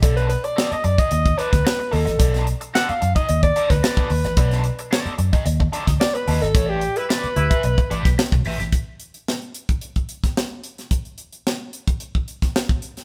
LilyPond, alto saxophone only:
\new Staff \with { instrumentName = "Alto saxophone" } { \time 4/4 \key a \lydian \tempo 4 = 110 a'16 b'16 b'16 d''8 dis''16 d''16 dis''8. b'4 a'8~ | a'8 r8 fis''16 eis''8 dis''8 d''8 b'4~ b'16~ | b'4~ b'16 r4. r16 d''16 b'8 a'16~ | a'16 g'8 b'2~ b'8 r8. |
r1 | r1 | }